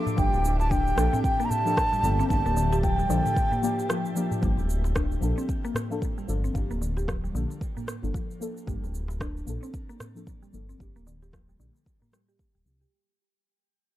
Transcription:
Already playing: A#2 F3 A#3 D4 G4 A4 E5
0.06 darbuka dum, shaker
0.16 G1 F3 G3 A#3 D4 G4 G5, kick, shaker
0.33 D1, darbuka ka, shaker
0.45 shaker
0.60 A5, darbuka tek, shaker
0.71 D4 G5, kick, shaker
0.87 shaker
0.96 A#1 F3 A#3 D4 A4, cross-stick, shaker
1.13 C4, darbuka dum, shaker
1.23 G5, kick, shaker
1.39 A#3, darbuka ka, shaker
1.45 A#5
1.50 A5, darbuka dum, shaker
1.65 F3 A#3 D4 A4, shaker
1.77 kick, cross-stick, shaker
1.92 G3, darbuka dum, shaker
2.03 G1 F3 A#3 D4 A4, shaker
2.19 C4, shaker
2.28 G1 F3 A#3 D4 A5, kick, shaker
2.33 G4
2.45 D1 A#3, darbuka ka, shaker
2.57 D3, shaker
2.73 G4, darbuka tek, shaker
2.83 F3 G5, kick, shaker
2.99 G3, shaker
3.09 A#1 D3 F3 A#3 D4 A4, shaker
3.25 darbuka ka, darbuka tek, darbuka dum, shaker
3.36 kick, shaker
3.51 A#3, darbuka dum, shaker
3.62 F3 A#3 D4 G4, shaker
3.79 darbuka tek, shaker
3.89 F3, cross-stick, shaker
4.05 darbuka ka, shaker
4.16 F3 A#3 D4 G4, shaker
4.31 darbuka dum, shaker
4.41 G1 F3 G3 A#3 D4 G4, kick, shaker
4.57 D1, darbuka ka, shaker
4.70 shaker
4.84 darbuka tek, shaker
4.96 D4, kick, cross-stick, shaker
5.12 shaker
5.20 A#1 F3 A#3 D4, shaker
5.24 A4
5.38 C4, shaker
5.49 kick, shaker
5.64 A#3, darbuka ka, shaker
5.74 cross-stick, darbuka dum, shaker
5.90 F3 A#3 D4 A4, shaker
6.02 kick, shaker
6.18 G3, shaker
6.27 G1 F3 A#3 D4 A4, shaker
6.44 C4, shaker
6.53 G1 F3 A#3 D4, kick, shaker
6.57 G4
6.70 D1 A#3, darbuka ka, shaker
6.82 D3, shaker
6.97 G4, darbuka tek, shaker
7.08 F3, kick, cross-stick, shaker
7.24 G3, shaker
7.33 A#1 D3 F3 A#3 D4 A4, shaker
7.50 darbuka ka, darbuka tek, shaker
7.61 kick, shaker
7.77 A#3, darbuka dum, shaker
7.88 cross-stick, shaker
8.02 G1 F3 A#3 D4 A4, darbuka tek, shaker
8.14 F3, kick, shaker
8.31 shaker
8.40 F3 A#3 D4 A4, shaker
8.57 shaker
8.66 G1 F3 G3 A#3 D4, kick, shaker
8.70 G4
8.83 D1, darbuka ka, shaker
8.95 shaker
9.08 darbuka tek, shaker
9.21 D4, kick, cross-stick, shaker
9.37 shaker
9.45 A#1 F3 A#3 D4 A4, shaker
9.63 C4, shaker
9.74 kick, shaker
9.89 A#3, darbuka ka, shaker
10.00 cross-stick, darbuka dum, shaker
10.15 F3 A#3 D4 A4, shaker
10.27 kick, shaker
10.42 G3, shaker
10.52 G1 F3 A#3 D4 A4, shaker
10.69 C4, shaker
10.78 G1 F3 A#3 D4, kick, shaker
10.82 G4
10.96 D1 A#3, darbuka ka, shaker
11.07 D3, shaker
11.22 G4, darbuka tek, shaker
11.33 F3, kick, cross-stick, shaker
11.49 G3, shaker
11.58 A#1 D3 F3 A#3 D4 A4, shaker
11.75 darbuka ka, darbuka tek, shaker
11.86 kick, shaker
12.02 A#3, darbuka dum, shaker
12.11 F3 G3 A#3 D4 G4, cross-stick, shaker
12.28 G4, darbuka tek, shaker
12.39 kick, shaker
12.55 D1 G3, shaker
12.64 C2 F3 A#3 D4 G4, shaker
12.81 G4, shaker

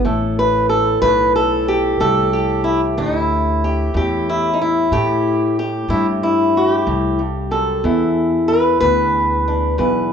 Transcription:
0.05 A1 A2 A4
0.39 B4
0.69 A4
1.02 B1 A2 B4
1.36 A4
1.68 G4
2.00 C2 A2 A4
2.33 G4
2.64 E4
2.98 D2 A2 D#4
3.18 E4
3.64 G4
3.94 E2 A2 G4
4.29 E4
4.54 D#4
4.61 E4
4.91 A2 G4
5.59 G4
5.88 G2 A2 E4
6.23 E4
6.57 F#4
6.70 G4
6.87 C2 A2
7.19 G2
7.51 F#2 A4
7.84 E2 E4
8.48 B4
8.80 D2 E2 B4
9.48 D4
9.78 B1 E2 B4

